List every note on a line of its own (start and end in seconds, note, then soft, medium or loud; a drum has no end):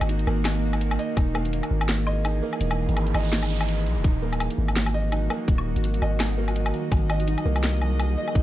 0.00 0.26 G#1 loud
0.00 1.17 D#3 medium
0.00 0.27 A#3 loud
0.00 1.17 A#3 medium
0.00 0.09 D#4 medium
0.00 1.88 F#4 medium
0.00 0.99 D#5 loud
0.00 1.17 D#5 medium
0.00 closed hi-hat soft
0.00 low woodblock medium
0.09 0.25 D#4 medium
0.09 closed hi-hat medium
0.19 closed hi-hat soft
0.27 0.98 G#1 loud
0.27 0.44 A#3 loud
0.27 low woodblock medium
0.45 snare loud
0.45 closed hi-hat medium
0.45 low woodblock medium
0.73 open hi-hat soft
0.73 low woodblock medium
0.81 closed hi-hat medium
0.91 low woodblock medium
0.99 1.10 D#5 loud
0.99 open hi-hat soft
1.17 1.62 E1 loud
1.17 4.04 E3 medium
1.17 1.33 D#4 medium
1.17 kick loud
1.17 closed hi-hat medium
1.17 low woodblock medium
1.34 1.52 A#3 loud
1.34 low woodblock medium
1.42 4.49 G#4 loud
1.42 closed hi-hat soft
1.53 closed hi-hat medium
1.63 closed hi-hat soft
1.63 low woodblock medium
1.71 2.42 G#1 loud
1.81 open hi-hat soft
1.81 low woodblock medium
1.89 snare loud
1.89 closed hi-hat medium
2.07 2.18 D#5 loud
2.07 low woodblock medium
2.25 2.41 D#4 medium
2.25 closed hi-hat medium
2.25 low woodblock medium
2.42 2.60 A#3 loud
2.53 low woodblock medium
2.61 2.87 E1 loud
2.61 closed hi-hat medium
2.61 noise sweep medium
2.71 low woodblock medium
2.89 3.14 G#1 loud
2.89 closed hi-hat soft
2.97 closed hi-hat medium
2.97 low woodblock medium
3.07 closed hi-hat soft
3.14 3.88 G#1 loud
3.14 3.26 D#5 loud
3.14 low woodblock medium
3.25 open hi-hat soft
3.32 3.49 D#4 medium
3.32 snare loud
3.32 closed hi-hat medium
3.43 low woodblock medium
3.50 3.67 D#4 medium
3.50 closed hi-hat soft
3.61 open hi-hat soft
3.61 low woodblock medium
3.69 closed hi-hat medium
3.86 3.98 B1 loud
3.86 open hi-hat soft
3.96 4.04 E1 loud
4.04 4.49 D#1 loud
4.04 6.92 D#3 medium
4.04 8.43 F#3 medium
4.04 4.21 D#4 medium
4.04 8.43 F#4 medium
4.04 kick loud
4.04 closed hi-hat medium
4.12 7.89 F#4 medium
4.22 4.39 A#3 loud
4.28 7.76 A#3 medium
4.33 closed hi-hat soft
4.33 low woodblock medium
4.40 closed hi-hat medium
4.40 low woodblock medium
4.50 closed hi-hat soft
4.58 5.29 G#1 loud
4.68 open hi-hat soft
4.68 low woodblock medium
4.76 8.43 D#5 loud
4.76 snare loud
4.76 closed hi-hat medium
4.86 low woodblock medium
4.94 5.05 D#5 loud
5.12 5.29 D#4 medium
5.12 closed hi-hat medium
5.12 low woodblock medium
5.30 5.47 A#3 loud
5.30 low woodblock medium
5.48 5.75 D#1 loud
5.48 kick loud
5.48 closed hi-hat medium
5.58 low woodblock medium
5.76 6.01 G#1 loud
5.76 closed hi-hat soft
5.84 closed hi-hat medium
5.94 closed hi-hat soft
6.02 6.73 G#1 loud
6.02 6.13 D#5 loud
6.02 low woodblock medium
6.20 6.36 D#4 medium
6.20 snare loud
6.20 closed hi-hat medium
6.20 low woodblock medium
6.38 6.55 A#3 loud
6.48 open hi-hat soft
6.48 low woodblock medium
6.56 closed hi-hat medium
6.66 low woodblock medium
6.74 open hi-hat soft
6.92 7.36 G#1 loud
6.92 8.43 G#3 medium
6.92 kick loud
6.92 closed hi-hat medium
6.92 low woodblock medium
7.02 8.43 G#4 medium
7.10 7.21 D#5 loud
7.10 low woodblock medium
7.20 closed hi-hat soft
7.28 7.44 D#4 medium
7.28 closed hi-hat medium
7.38 closed hi-hat soft
7.38 low woodblock soft
7.46 8.16 C2 loud
7.46 7.63 A#3 loud
7.46 8.43 C5 medium
7.56 open hi-hat soft
7.56 low woodblock medium
7.64 snare loud
7.64 closed hi-hat medium
7.82 low woodblock medium
8.00 closed hi-hat medium
8.00 low woodblock medium
8.17 8.29 D#5 loud
8.28 low woodblock medium
8.35 8.43 G#1 loud
8.35 8.43 D#4 medium
8.35 kick loud
8.35 closed hi-hat medium